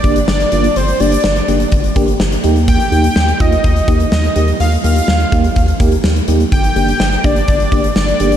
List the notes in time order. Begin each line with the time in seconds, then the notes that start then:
Already playing: D5
0.04 G1 A#3 D4 G4, kick, closed hi-hat
0.16 closed hi-hat
0.28 G1 D5, snare
0.40 closed hi-hat
0.52 G1 A#3 D4 F4, closed hi-hat
0.64 closed hi-hat
0.76 G1 C5, closed hi-hat
0.88 closed hi-hat
1.00 G1 A#3 D4 G4 D5, closed hi-hat
1.12 closed hi-hat
1.24 G1, snare
1.36 closed hi-hat
1.48 G1 A#3 D4 G4, closed hi-hat
1.60 closed hi-hat
1.72 G1, kick, closed hi-hat
1.84 closed hi-hat
1.96 G1 A#3 D4 G4, kick, closed hi-hat
2.08 closed hi-hat
2.20 G1, snare
2.32 closed hi-hat
2.44 D#2 A#3 D#4 G4, closed hi-hat
2.56 closed hi-hat
2.68 G5, kick, closed hi-hat
2.80 closed hi-hat
2.92 D#2 A#3 D#4 G4, closed hi-hat
3.04 closed hi-hat
3.16 D#2, snare
3.28 closed hi-hat
3.40 D#2 A#3 D#4 F4 D#5, kick, closed hi-hat
3.52 closed hi-hat
3.64 D#2, kick, closed hi-hat
3.76 closed hi-hat
3.88 D#2 A#3 D#4 G4, kick, closed hi-hat
4.00 closed hi-hat
4.12 D#2 D#5, snare
4.24 closed hi-hat
4.36 D#2 A#3 D#4 G4, closed hi-hat
4.48 closed hi-hat
4.60 D#2 F5, closed hi-hat
4.72 closed hi-hat
4.84 D#2 A#3 D#4 G4 F5, closed hi-hat
4.96 closed hi-hat
5.08 D#2, snare
5.20 closed hi-hat
5.32 D#2 A#3 D#4 G4, kick, closed hi-hat
5.44 closed hi-hat
5.56 D#2, kick, closed hi-hat
5.68 closed hi-hat
5.80 D#2 A#3 D#4 G4, kick, closed hi-hat
5.92 closed hi-hat
6.04 D#2, snare
6.16 closed hi-hat
6.28 D#2 A#3 D#4 G4, closed hi-hat
6.40 closed hi-hat
6.52 G1 G5, kick, closed hi-hat
6.64 closed hi-hat
6.76 G1 A#3 D4 G4, closed hi-hat
6.88 closed hi-hat
7.00 G1, snare
7.12 closed hi-hat
7.24 G1 A#3 D4 G4 D5, kick, closed hi-hat
7.36 closed hi-hat
7.48 G1, kick, closed hi-hat
7.60 closed hi-hat
7.72 G1 A#3 D4 G4, kick, closed hi-hat
7.84 closed hi-hat
7.96 G1 D5, snare
8.08 closed hi-hat
8.20 G1 A#3 D4 G4, closed hi-hat
8.32 closed hi-hat